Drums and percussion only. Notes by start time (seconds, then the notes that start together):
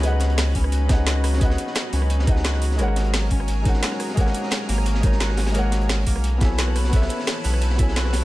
0.03 closed hi-hat
0.12 cross-stick
0.20 snare, closed hi-hat
0.30 closed hi-hat
0.37 snare, closed hi-hat, open hi-hat
0.55 kick, closed hi-hat, open hi-hat
0.64 cross-stick
0.72 closed hi-hat
0.89 kick, snare, closed hi-hat
1.06 snare, closed hi-hat
1.16 cross-stick
1.24 cross-stick, closed hi-hat, open hi-hat
1.33 snare
1.41 kick, closed hi-hat
1.50 cross-stick, snare
1.58 closed hi-hat
1.67 snare
1.75 snare, closed hi-hat
1.93 snare, closed hi-hat, open hi-hat
2.02 cross-stick
2.10 closed hi-hat
2.19 snare
2.27 kick, closed hi-hat
2.36 snare
2.44 snare, closed hi-hat
2.54 cross-stick, snare
2.62 closed hi-hat, open hi-hat
2.71 snare
2.78 closed hi-hat
2.88 cross-stick
2.96 snare, closed hi-hat
3.04 closed hi-hat
3.13 snare, closed hi-hat, open hi-hat
3.30 kick, closed hi-hat, open hi-hat
3.40 cross-stick
3.48 closed hi-hat
3.65 kick, closed hi-hat
3.74 snare
3.83 snare, closed hi-hat
3.92 cross-stick, snare
4.00 cross-stick, closed hi-hat, open hi-hat
4.09 snare
4.17 kick, closed hi-hat
4.26 cross-stick, snare
4.34 closed hi-hat
4.43 snare
4.51 snare, closed hi-hat
4.68 snare, closed hi-hat, open hi-hat
4.78 cross-stick
4.86 closed hi-hat
4.95 snare
5.03 kick, closed hi-hat
5.12 snare
5.20 snare, closed hi-hat
5.29 cross-stick, snare
5.37 snare, closed hi-hat, open hi-hat
5.46 snare, closed hi-hat
5.54 closed hi-hat
5.64 cross-stick
5.71 snare, closed hi-hat
5.81 closed hi-hat
5.89 snare, closed hi-hat, open hi-hat
6.07 kick, closed hi-hat, open hi-hat
6.16 cross-stick
6.24 closed hi-hat
6.41 kick, snare, closed hi-hat
6.58 snare, closed hi-hat
6.68 cross-stick
6.76 cross-stick, closed hi-hat, open hi-hat
6.84 snare
6.93 kick, closed hi-hat
7.02 cross-stick, snare
7.09 closed hi-hat
7.19 snare
7.27 snare, closed hi-hat
7.44 snare, closed hi-hat, open hi-hat
7.54 cross-stick
7.61 closed hi-hat
7.70 snare
7.78 kick, closed hi-hat
7.88 snare
7.96 snare, closed hi-hat
8.05 cross-stick, snare
8.13 snare, closed hi-hat, open hi-hat